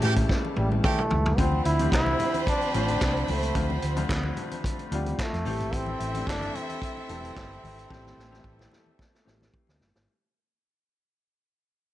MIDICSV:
0, 0, Header, 1, 7, 480
1, 0, Start_track
1, 0, Key_signature, 0, "minor"
1, 0, Tempo, 543478
1, 1217, Time_signature, 4, 2, 24, 8
1, 10544, End_track
2, 0, Start_track
2, 0, Title_t, "Violin section"
2, 0, Program_c, 0, 48
2, 0, Note_on_c, 0, 69, 104
2, 0, Note_on_c, 0, 81, 127
2, 702, Note_off_c, 0, 69, 0
2, 702, Note_off_c, 0, 81, 0
2, 1220, Note_on_c, 0, 60, 118
2, 1220, Note_on_c, 0, 72, 119
2, 4540, Note_off_c, 0, 60, 0
2, 4540, Note_off_c, 0, 72, 0
2, 4809, Note_on_c, 0, 64, 101
2, 4810, Note_on_c, 0, 76, 116
2, 8378, Note_off_c, 0, 64, 0
2, 8378, Note_off_c, 0, 76, 0
2, 10544, End_track
3, 0, Start_track
3, 0, Title_t, "Horn section"
3, 0, Program_c, 1, 61
3, 23, Note_on_c, 1, 61, 109
3, 25, Note_on_c, 1, 67, 124
3, 26, Note_on_c, 1, 52, 97
3, 102, Note_off_c, 1, 61, 0
3, 104, Note_off_c, 1, 52, 0
3, 104, Note_off_c, 1, 67, 0
3, 740, Note_on_c, 1, 52, 95
3, 740, Note_on_c, 1, 61, 99
3, 742, Note_on_c, 1, 67, 105
3, 892, Note_off_c, 1, 52, 0
3, 892, Note_off_c, 1, 61, 0
3, 893, Note_off_c, 1, 67, 0
3, 1219, Note_on_c, 1, 62, 80
3, 1220, Note_on_c, 1, 53, 91
3, 1221, Note_on_c, 1, 83, 93
3, 4539, Note_off_c, 1, 53, 0
3, 4539, Note_off_c, 1, 62, 0
3, 4540, Note_off_c, 1, 83, 0
3, 4818, Note_on_c, 1, 52, 89
3, 4818, Note_on_c, 1, 69, 100
3, 4820, Note_on_c, 1, 60, 86
3, 8382, Note_off_c, 1, 69, 0
3, 8383, Note_off_c, 1, 52, 0
3, 8383, Note_off_c, 1, 60, 0
3, 10544, End_track
4, 0, Start_track
4, 0, Title_t, "Trombone"
4, 0, Program_c, 2, 57
4, 0, Note_on_c, 2, 49, 127
4, 498, Note_off_c, 2, 49, 0
4, 503, Note_on_c, 2, 55, 87
4, 610, Note_off_c, 2, 55, 0
4, 749, Note_on_c, 2, 57, 101
4, 1215, Note_on_c, 2, 60, 111
4, 1228, Note_off_c, 2, 57, 0
4, 1456, Note_off_c, 2, 60, 0
4, 1460, Note_on_c, 2, 64, 97
4, 1681, Note_off_c, 2, 64, 0
4, 1710, Note_on_c, 2, 64, 121
4, 2150, Note_off_c, 2, 64, 0
4, 2196, Note_on_c, 2, 62, 117
4, 2410, Note_off_c, 2, 62, 0
4, 2429, Note_on_c, 2, 62, 102
4, 2921, Note_on_c, 2, 57, 87
4, 2934, Note_off_c, 2, 62, 0
4, 3387, Note_off_c, 2, 57, 0
4, 4359, Note_on_c, 2, 55, 95
4, 4603, Note_on_c, 2, 57, 110
4, 4617, Note_off_c, 2, 55, 0
4, 5079, Note_on_c, 2, 60, 113
4, 5093, Note_off_c, 2, 57, 0
4, 5551, Note_on_c, 2, 62, 124
4, 5564, Note_off_c, 2, 60, 0
4, 5802, Note_on_c, 2, 60, 118
4, 5815, Note_off_c, 2, 62, 0
4, 8430, Note_off_c, 2, 60, 0
4, 10544, End_track
5, 0, Start_track
5, 0, Title_t, "Grand piano"
5, 0, Program_c, 3, 0
5, 0, Control_c, 3, 64, 127
5, 0, Note_on_c, 3, 49, 102
5, 0, Note_on_c, 3, 52, 84
5, 0, Note_on_c, 3, 55, 92
5, 0, Note_on_c, 3, 57, 93
5, 0, Note_on_c, 3, 64, 112
5, 0, Note_on_c, 3, 65, 87
5, 0, Note_on_c, 3, 67, 114
5, 171, Note_off_c, 3, 49, 0
5, 174, Note_off_c, 3, 52, 0
5, 176, Note_off_c, 3, 55, 0
5, 177, Note_off_c, 3, 57, 0
5, 208, Note_off_c, 3, 67, 0
5, 1218, Note_on_c, 3, 50, 81
5, 1221, Note_on_c, 3, 53, 67
5, 1224, Note_on_c, 3, 57, 75
5, 1227, Note_on_c, 3, 60, 72
5, 1228, Note_off_c, 3, 65, 0
5, 1228, Control_c, 3, 64, 0
5, 1230, Note_off_c, 3, 64, 0
5, 1232, Note_on_c, 3, 65, 81
5, 1372, Control_c, 3, 64, 127
5, 1454, Note_off_c, 3, 50, 0
5, 1456, Note_off_c, 3, 53, 0
5, 1457, Note_off_c, 3, 57, 0
5, 1459, Note_off_c, 3, 60, 0
5, 1462, Note_off_c, 3, 65, 0
5, 1583, Note_on_c, 3, 50, 76
5, 1584, Note_on_c, 3, 53, 65
5, 1588, Note_on_c, 3, 57, 65
5, 1589, Note_on_c, 3, 60, 70
5, 1594, Note_on_c, 3, 67, 81
5, 2132, Note_off_c, 3, 50, 0
5, 2133, Note_off_c, 3, 53, 0
5, 2135, Note_off_c, 3, 57, 0
5, 2135, Note_off_c, 3, 60, 0
5, 2137, Note_off_c, 3, 67, 0
5, 2419, Note_on_c, 3, 53, 70
5, 2422, Note_on_c, 3, 50, 78
5, 2425, Note_on_c, 3, 60, 65
5, 2426, Note_on_c, 3, 57, 73
5, 2432, Note_on_c, 3, 65, 74
5, 2891, Note_off_c, 3, 53, 0
5, 2893, Note_off_c, 3, 50, 0
5, 2894, Note_off_c, 3, 60, 0
5, 2895, Note_off_c, 3, 57, 0
5, 2898, Note_off_c, 3, 65, 0
5, 3137, Note_on_c, 3, 50, 77
5, 3139, Note_on_c, 3, 53, 76
5, 3141, Note_on_c, 3, 57, 66
5, 3148, Note_on_c, 3, 60, 65
5, 3149, Note_on_c, 3, 65, 84
5, 3373, Note_off_c, 3, 50, 0
5, 3374, Note_off_c, 3, 53, 0
5, 3375, Note_off_c, 3, 57, 0
5, 3378, Note_off_c, 3, 60, 0
5, 3379, Note_off_c, 3, 65, 0
5, 3498, Note_on_c, 3, 50, 90
5, 3503, Note_on_c, 3, 53, 81
5, 3503, Note_on_c, 3, 57, 78
5, 3506, Note_on_c, 3, 60, 81
5, 3513, Note_on_c, 3, 65, 91
5, 4049, Note_off_c, 3, 50, 0
5, 4051, Note_off_c, 3, 53, 0
5, 4051, Note_off_c, 3, 57, 0
5, 4053, Note_off_c, 3, 60, 0
5, 4056, Note_off_c, 3, 65, 0
5, 4336, Note_on_c, 3, 50, 76
5, 4344, Note_on_c, 3, 53, 62
5, 4344, Note_on_c, 3, 57, 69
5, 4351, Note_on_c, 3, 60, 72
5, 4351, Note_on_c, 3, 65, 80
5, 4806, Note_off_c, 3, 57, 0
5, 4809, Note_off_c, 3, 50, 0
5, 4813, Note_off_c, 3, 53, 0
5, 4814, Note_off_c, 3, 60, 0
5, 4814, Note_on_c, 3, 52, 82
5, 4817, Note_off_c, 3, 65, 0
5, 4819, Note_on_c, 3, 55, 69
5, 4819, Note_on_c, 3, 57, 78
5, 4824, Control_c, 3, 64, 0
5, 4827, Note_on_c, 3, 60, 77
5, 4829, Note_on_c, 3, 67, 98
5, 4960, Control_c, 3, 64, 127
5, 5293, Note_off_c, 3, 52, 0
5, 5296, Note_off_c, 3, 55, 0
5, 5296, Note_off_c, 3, 57, 0
5, 5300, Note_off_c, 3, 60, 0
5, 5301, Note_off_c, 3, 67, 0
5, 5431, Note_on_c, 3, 52, 71
5, 5433, Note_on_c, 3, 57, 65
5, 5435, Note_on_c, 3, 55, 66
5, 5438, Note_on_c, 3, 60, 63
5, 5443, Note_on_c, 3, 62, 77
5, 5975, Note_off_c, 3, 52, 0
5, 5976, Note_off_c, 3, 57, 0
5, 5977, Note_off_c, 3, 55, 0
5, 5978, Note_off_c, 3, 60, 0
5, 5981, Note_off_c, 3, 62, 0
5, 6257, Note_on_c, 3, 52, 74
5, 6262, Note_on_c, 3, 55, 70
5, 6266, Note_on_c, 3, 57, 68
5, 6267, Note_on_c, 3, 60, 73
5, 6269, Note_on_c, 3, 69, 84
5, 6730, Note_off_c, 3, 52, 0
5, 6732, Note_off_c, 3, 55, 0
5, 6735, Note_off_c, 3, 57, 0
5, 6735, Note_off_c, 3, 60, 0
5, 6736, Note_off_c, 3, 69, 0
5, 6972, Note_on_c, 3, 52, 87
5, 6977, Note_on_c, 3, 55, 86
5, 6977, Note_on_c, 3, 57, 88
5, 6982, Note_on_c, 3, 60, 90
5, 6984, Note_on_c, 3, 67, 97
5, 7210, Note_off_c, 3, 52, 0
5, 7213, Note_off_c, 3, 55, 0
5, 7213, Note_off_c, 3, 57, 0
5, 7216, Note_off_c, 3, 60, 0
5, 7216, Note_off_c, 3, 67, 0
5, 7335, Note_on_c, 3, 52, 87
5, 7339, Note_on_c, 3, 55, 77
5, 7339, Note_on_c, 3, 57, 85
5, 7348, Note_on_c, 3, 60, 75
5, 7350, Note_on_c, 3, 67, 94
5, 7888, Note_off_c, 3, 52, 0
5, 7890, Note_off_c, 3, 55, 0
5, 7890, Note_off_c, 3, 57, 0
5, 7895, Note_off_c, 3, 60, 0
5, 7895, Note_off_c, 3, 67, 0
5, 8170, Note_on_c, 3, 52, 83
5, 8171, Note_on_c, 3, 55, 72
5, 8177, Note_on_c, 3, 57, 75
5, 8178, Note_on_c, 3, 60, 77
5, 8183, Note_on_c, 3, 67, 89
5, 8648, Note_off_c, 3, 52, 0
5, 8649, Note_off_c, 3, 55, 0
5, 8652, Note_off_c, 3, 57, 0
5, 8652, Note_off_c, 3, 60, 0
5, 8655, Note_off_c, 3, 67, 0
5, 8908, Control_c, 3, 64, 0
5, 10544, End_track
6, 0, Start_track
6, 0, Title_t, "Fingered electric bass"
6, 0, Program_c, 4, 33
6, 26, Note_on_c, 4, 45, 111
6, 210, Note_off_c, 4, 45, 0
6, 508, Note_on_c, 4, 33, 110
6, 691, Note_off_c, 4, 33, 0
6, 991, Note_on_c, 4, 37, 101
6, 1173, Note_off_c, 4, 37, 0
6, 1223, Note_on_c, 4, 38, 114
6, 1408, Note_off_c, 4, 38, 0
6, 1462, Note_on_c, 4, 38, 90
6, 1647, Note_off_c, 4, 38, 0
6, 1699, Note_on_c, 4, 36, 101
6, 1885, Note_off_c, 4, 36, 0
6, 2426, Note_on_c, 4, 33, 103
6, 2609, Note_off_c, 4, 33, 0
6, 2665, Note_on_c, 4, 36, 80
6, 2848, Note_off_c, 4, 36, 0
6, 2908, Note_on_c, 4, 37, 102
6, 3090, Note_off_c, 4, 37, 0
6, 3143, Note_on_c, 4, 38, 107
6, 3327, Note_off_c, 4, 38, 0
6, 3382, Note_on_c, 4, 38, 87
6, 3566, Note_off_c, 4, 38, 0
6, 3616, Note_on_c, 4, 38, 95
6, 3803, Note_off_c, 4, 38, 0
6, 4343, Note_on_c, 4, 38, 99
6, 4526, Note_off_c, 4, 38, 0
6, 4713, Note_on_c, 4, 41, 81
6, 4796, Note_off_c, 4, 41, 0
6, 4824, Note_on_c, 4, 33, 94
6, 4945, Note_on_c, 4, 32, 94
6, 4958, Note_off_c, 4, 33, 0
6, 5063, Note_off_c, 4, 32, 0
6, 5063, Note_on_c, 4, 33, 122
6, 5247, Note_off_c, 4, 33, 0
6, 5302, Note_on_c, 4, 33, 96
6, 5486, Note_off_c, 4, 33, 0
6, 5539, Note_on_c, 4, 31, 93
6, 5724, Note_off_c, 4, 31, 0
6, 6265, Note_on_c, 4, 28, 107
6, 6448, Note_off_c, 4, 28, 0
6, 6509, Note_on_c, 4, 31, 92
6, 6690, Note_off_c, 4, 31, 0
6, 6741, Note_on_c, 4, 32, 88
6, 6925, Note_off_c, 4, 32, 0
6, 6987, Note_on_c, 4, 33, 110
6, 7169, Note_off_c, 4, 33, 0
6, 7218, Note_on_c, 4, 33, 100
6, 7404, Note_off_c, 4, 33, 0
6, 7459, Note_on_c, 4, 33, 106
6, 7644, Note_off_c, 4, 33, 0
6, 8190, Note_on_c, 4, 33, 91
6, 8372, Note_off_c, 4, 33, 0
6, 8556, Note_on_c, 4, 38, 83
6, 8639, Note_off_c, 4, 38, 0
6, 8671, Note_on_c, 4, 31, 84
6, 8764, Note_off_c, 4, 31, 0
6, 8793, Note_on_c, 4, 32, 73
6, 8878, Note_off_c, 4, 32, 0
6, 10544, End_track
7, 0, Start_track
7, 0, Title_t, "Drums"
7, 15, Note_on_c, 9, 42, 60
7, 19, Note_on_c, 9, 64, 92
7, 103, Note_off_c, 9, 42, 0
7, 107, Note_off_c, 9, 64, 0
7, 143, Note_on_c, 9, 42, 58
7, 144, Note_on_c, 9, 63, 58
7, 147, Note_on_c, 9, 36, 90
7, 232, Note_off_c, 9, 42, 0
7, 233, Note_off_c, 9, 63, 0
7, 235, Note_off_c, 9, 36, 0
7, 260, Note_on_c, 9, 36, 96
7, 267, Note_on_c, 9, 38, 63
7, 348, Note_off_c, 9, 36, 0
7, 355, Note_off_c, 9, 38, 0
7, 395, Note_on_c, 9, 62, 47
7, 483, Note_off_c, 9, 62, 0
7, 498, Note_on_c, 9, 48, 69
7, 586, Note_off_c, 9, 48, 0
7, 633, Note_on_c, 9, 63, 82
7, 721, Note_off_c, 9, 63, 0
7, 741, Note_on_c, 9, 47, 94
7, 743, Note_on_c, 9, 36, 123
7, 747, Note_on_c, 9, 62, 42
7, 829, Note_off_c, 9, 47, 0
7, 831, Note_off_c, 9, 36, 0
7, 835, Note_off_c, 9, 62, 0
7, 869, Note_on_c, 9, 45, 85
7, 958, Note_off_c, 9, 45, 0
7, 976, Note_on_c, 9, 63, 83
7, 976, Note_on_c, 9, 64, 80
7, 977, Note_on_c, 9, 43, 99
7, 1065, Note_off_c, 9, 63, 0
7, 1065, Note_off_c, 9, 64, 0
7, 1066, Note_off_c, 9, 43, 0
7, 1111, Note_on_c, 9, 43, 106
7, 1199, Note_off_c, 9, 43, 0
7, 1221, Note_on_c, 9, 36, 98
7, 1224, Note_on_c, 9, 42, 71
7, 1309, Note_off_c, 9, 36, 0
7, 1312, Note_off_c, 9, 42, 0
7, 1340, Note_on_c, 9, 63, 70
7, 1428, Note_off_c, 9, 63, 0
7, 1458, Note_on_c, 9, 42, 69
7, 1547, Note_off_c, 9, 42, 0
7, 1583, Note_on_c, 9, 42, 59
7, 1588, Note_on_c, 9, 63, 81
7, 1671, Note_off_c, 9, 42, 0
7, 1676, Note_off_c, 9, 63, 0
7, 1696, Note_on_c, 9, 36, 106
7, 1700, Note_on_c, 9, 62, 35
7, 1710, Note_on_c, 9, 38, 121
7, 1713, Note_on_c, 9, 39, 90
7, 1784, Note_off_c, 9, 36, 0
7, 1788, Note_off_c, 9, 62, 0
7, 1798, Note_off_c, 9, 38, 0
7, 1801, Note_off_c, 9, 39, 0
7, 1822, Note_on_c, 9, 62, 43
7, 1822, Note_on_c, 9, 63, 90
7, 1911, Note_off_c, 9, 62, 0
7, 1911, Note_off_c, 9, 63, 0
7, 1936, Note_on_c, 9, 64, 92
7, 1939, Note_on_c, 9, 42, 63
7, 2024, Note_off_c, 9, 64, 0
7, 2027, Note_off_c, 9, 42, 0
7, 2067, Note_on_c, 9, 42, 45
7, 2070, Note_on_c, 9, 63, 66
7, 2155, Note_off_c, 9, 42, 0
7, 2159, Note_off_c, 9, 63, 0
7, 2181, Note_on_c, 9, 36, 102
7, 2189, Note_on_c, 9, 42, 73
7, 2269, Note_off_c, 9, 36, 0
7, 2278, Note_off_c, 9, 42, 0
7, 2310, Note_on_c, 9, 62, 44
7, 2313, Note_on_c, 9, 42, 32
7, 2398, Note_off_c, 9, 62, 0
7, 2401, Note_off_c, 9, 42, 0
7, 2422, Note_on_c, 9, 42, 62
7, 2510, Note_off_c, 9, 42, 0
7, 2545, Note_on_c, 9, 42, 43
7, 2551, Note_on_c, 9, 63, 82
7, 2633, Note_off_c, 9, 42, 0
7, 2639, Note_off_c, 9, 63, 0
7, 2662, Note_on_c, 9, 36, 124
7, 2662, Note_on_c, 9, 62, 40
7, 2664, Note_on_c, 9, 38, 113
7, 2666, Note_on_c, 9, 39, 99
7, 2750, Note_off_c, 9, 36, 0
7, 2750, Note_off_c, 9, 62, 0
7, 2752, Note_off_c, 9, 38, 0
7, 2755, Note_off_c, 9, 39, 0
7, 2796, Note_on_c, 9, 42, 33
7, 2885, Note_off_c, 9, 42, 0
7, 2892, Note_on_c, 9, 63, 74
7, 2892, Note_on_c, 9, 64, 79
7, 2897, Note_on_c, 9, 46, 56
7, 2981, Note_off_c, 9, 63, 0
7, 2981, Note_off_c, 9, 64, 0
7, 2985, Note_off_c, 9, 46, 0
7, 3028, Note_on_c, 9, 42, 51
7, 3116, Note_off_c, 9, 42, 0
7, 3134, Note_on_c, 9, 42, 75
7, 3137, Note_on_c, 9, 36, 107
7, 3151, Note_on_c, 9, 62, 37
7, 3223, Note_off_c, 9, 42, 0
7, 3225, Note_off_c, 9, 36, 0
7, 3239, Note_off_c, 9, 62, 0
7, 3268, Note_on_c, 9, 62, 35
7, 3268, Note_on_c, 9, 63, 80
7, 3357, Note_off_c, 9, 62, 0
7, 3357, Note_off_c, 9, 63, 0
7, 3375, Note_on_c, 9, 42, 70
7, 3464, Note_off_c, 9, 42, 0
7, 3502, Note_on_c, 9, 42, 58
7, 3506, Note_on_c, 9, 63, 74
7, 3590, Note_off_c, 9, 42, 0
7, 3595, Note_off_c, 9, 63, 0
7, 3614, Note_on_c, 9, 36, 110
7, 3630, Note_on_c, 9, 38, 118
7, 3632, Note_on_c, 9, 39, 99
7, 3703, Note_off_c, 9, 36, 0
7, 3718, Note_off_c, 9, 38, 0
7, 3721, Note_off_c, 9, 39, 0
7, 3740, Note_on_c, 9, 62, 43
7, 3740, Note_on_c, 9, 63, 80
7, 3828, Note_off_c, 9, 62, 0
7, 3828, Note_off_c, 9, 63, 0
7, 3857, Note_on_c, 9, 42, 57
7, 3858, Note_on_c, 9, 64, 86
7, 3945, Note_off_c, 9, 42, 0
7, 3946, Note_off_c, 9, 64, 0
7, 3987, Note_on_c, 9, 42, 47
7, 3991, Note_on_c, 9, 63, 60
7, 4075, Note_off_c, 9, 42, 0
7, 4080, Note_off_c, 9, 63, 0
7, 4100, Note_on_c, 9, 36, 84
7, 4108, Note_on_c, 9, 62, 36
7, 4111, Note_on_c, 9, 42, 80
7, 4188, Note_off_c, 9, 36, 0
7, 4197, Note_off_c, 9, 62, 0
7, 4200, Note_off_c, 9, 42, 0
7, 4231, Note_on_c, 9, 42, 31
7, 4319, Note_off_c, 9, 42, 0
7, 4343, Note_on_c, 9, 42, 66
7, 4432, Note_off_c, 9, 42, 0
7, 4470, Note_on_c, 9, 42, 43
7, 4474, Note_on_c, 9, 63, 78
7, 4559, Note_off_c, 9, 42, 0
7, 4563, Note_off_c, 9, 63, 0
7, 4582, Note_on_c, 9, 36, 119
7, 4590, Note_on_c, 9, 38, 119
7, 4593, Note_on_c, 9, 39, 94
7, 4670, Note_off_c, 9, 36, 0
7, 4678, Note_off_c, 9, 38, 0
7, 4681, Note_off_c, 9, 39, 0
7, 4715, Note_on_c, 9, 42, 34
7, 4718, Note_on_c, 9, 38, 36
7, 4803, Note_off_c, 9, 42, 0
7, 4806, Note_off_c, 9, 38, 0
7, 4817, Note_on_c, 9, 63, 68
7, 4817, Note_on_c, 9, 64, 81
7, 4821, Note_on_c, 9, 46, 52
7, 4905, Note_off_c, 9, 63, 0
7, 4905, Note_off_c, 9, 64, 0
7, 4910, Note_off_c, 9, 46, 0
7, 4949, Note_on_c, 9, 42, 53
7, 5038, Note_off_c, 9, 42, 0
7, 5059, Note_on_c, 9, 36, 106
7, 5065, Note_on_c, 9, 42, 70
7, 5066, Note_on_c, 9, 62, 39
7, 5147, Note_off_c, 9, 36, 0
7, 5153, Note_off_c, 9, 42, 0
7, 5154, Note_off_c, 9, 62, 0
7, 5179, Note_on_c, 9, 62, 36
7, 5179, Note_on_c, 9, 63, 74
7, 5267, Note_off_c, 9, 62, 0
7, 5267, Note_off_c, 9, 63, 0
7, 5302, Note_on_c, 9, 42, 64
7, 5390, Note_off_c, 9, 42, 0
7, 5426, Note_on_c, 9, 63, 73
7, 5428, Note_on_c, 9, 42, 59
7, 5514, Note_off_c, 9, 63, 0
7, 5516, Note_off_c, 9, 42, 0
7, 5538, Note_on_c, 9, 36, 105
7, 5542, Note_on_c, 9, 62, 34
7, 5561, Note_on_c, 9, 38, 127
7, 5564, Note_on_c, 9, 39, 103
7, 5626, Note_off_c, 9, 36, 0
7, 5631, Note_off_c, 9, 62, 0
7, 5650, Note_off_c, 9, 38, 0
7, 5653, Note_off_c, 9, 39, 0
7, 5664, Note_on_c, 9, 63, 90
7, 5671, Note_on_c, 9, 42, 37
7, 5753, Note_off_c, 9, 63, 0
7, 5760, Note_off_c, 9, 42, 0
7, 5778, Note_on_c, 9, 64, 83
7, 5788, Note_on_c, 9, 42, 61
7, 5866, Note_off_c, 9, 64, 0
7, 5876, Note_off_c, 9, 42, 0
7, 5908, Note_on_c, 9, 63, 56
7, 5913, Note_on_c, 9, 42, 49
7, 5996, Note_off_c, 9, 63, 0
7, 6002, Note_off_c, 9, 42, 0
7, 6021, Note_on_c, 9, 36, 102
7, 6033, Note_on_c, 9, 42, 76
7, 6109, Note_off_c, 9, 36, 0
7, 6121, Note_off_c, 9, 42, 0
7, 6157, Note_on_c, 9, 62, 46
7, 6246, Note_off_c, 9, 62, 0
7, 6263, Note_on_c, 9, 42, 69
7, 6351, Note_off_c, 9, 42, 0
7, 6393, Note_on_c, 9, 63, 78
7, 6400, Note_on_c, 9, 42, 45
7, 6482, Note_off_c, 9, 63, 0
7, 6489, Note_off_c, 9, 42, 0
7, 6505, Note_on_c, 9, 36, 127
7, 6512, Note_on_c, 9, 62, 41
7, 6514, Note_on_c, 9, 38, 124
7, 6517, Note_on_c, 9, 39, 96
7, 6594, Note_off_c, 9, 36, 0
7, 6600, Note_off_c, 9, 62, 0
7, 6602, Note_off_c, 9, 38, 0
7, 6605, Note_off_c, 9, 39, 0
7, 6650, Note_on_c, 9, 42, 32
7, 6739, Note_off_c, 9, 42, 0
7, 6745, Note_on_c, 9, 63, 77
7, 6745, Note_on_c, 9, 64, 72
7, 6753, Note_on_c, 9, 46, 58
7, 6833, Note_off_c, 9, 63, 0
7, 6833, Note_off_c, 9, 64, 0
7, 6841, Note_off_c, 9, 46, 0
7, 6879, Note_on_c, 9, 42, 52
7, 6967, Note_off_c, 9, 42, 0
7, 6982, Note_on_c, 9, 36, 114
7, 6999, Note_on_c, 9, 38, 56
7, 7070, Note_off_c, 9, 36, 0
7, 7087, Note_off_c, 9, 38, 0
7, 7109, Note_on_c, 9, 62, 38
7, 7109, Note_on_c, 9, 63, 71
7, 7124, Note_on_c, 9, 38, 51
7, 7197, Note_off_c, 9, 62, 0
7, 7197, Note_off_c, 9, 63, 0
7, 7213, Note_off_c, 9, 38, 0
7, 7237, Note_on_c, 9, 38, 64
7, 7326, Note_off_c, 9, 38, 0
7, 7352, Note_on_c, 9, 63, 74
7, 7362, Note_on_c, 9, 38, 61
7, 7440, Note_off_c, 9, 63, 0
7, 7450, Note_off_c, 9, 38, 0
7, 7456, Note_on_c, 9, 36, 96
7, 7466, Note_on_c, 9, 62, 32
7, 7544, Note_off_c, 9, 36, 0
7, 7555, Note_off_c, 9, 62, 0
7, 7589, Note_on_c, 9, 62, 37
7, 7589, Note_on_c, 9, 63, 82
7, 7600, Note_on_c, 9, 38, 67
7, 7677, Note_off_c, 9, 62, 0
7, 7677, Note_off_c, 9, 63, 0
7, 7688, Note_off_c, 9, 38, 0
7, 7697, Note_on_c, 9, 64, 88
7, 7710, Note_on_c, 9, 38, 74
7, 7785, Note_off_c, 9, 64, 0
7, 7799, Note_off_c, 9, 38, 0
7, 7829, Note_on_c, 9, 63, 57
7, 7917, Note_off_c, 9, 63, 0
7, 7940, Note_on_c, 9, 36, 99
7, 7954, Note_on_c, 9, 38, 77
7, 8029, Note_off_c, 9, 36, 0
7, 8042, Note_off_c, 9, 38, 0
7, 8080, Note_on_c, 9, 38, 71
7, 8168, Note_off_c, 9, 38, 0
7, 8190, Note_on_c, 9, 38, 86
7, 8278, Note_off_c, 9, 38, 0
7, 8310, Note_on_c, 9, 63, 84
7, 8319, Note_on_c, 9, 38, 81
7, 8398, Note_off_c, 9, 63, 0
7, 8407, Note_off_c, 9, 38, 0
7, 8422, Note_on_c, 9, 36, 118
7, 8422, Note_on_c, 9, 62, 42
7, 8510, Note_off_c, 9, 36, 0
7, 8510, Note_off_c, 9, 62, 0
7, 8542, Note_on_c, 9, 62, 44
7, 8558, Note_on_c, 9, 38, 82
7, 8630, Note_off_c, 9, 62, 0
7, 8646, Note_off_c, 9, 38, 0
7, 8651, Note_on_c, 9, 63, 73
7, 8651, Note_on_c, 9, 64, 72
7, 8667, Note_on_c, 9, 38, 93
7, 8740, Note_off_c, 9, 63, 0
7, 8740, Note_off_c, 9, 64, 0
7, 8755, Note_off_c, 9, 38, 0
7, 8793, Note_on_c, 9, 38, 110
7, 8881, Note_off_c, 9, 38, 0
7, 10544, End_track
0, 0, End_of_file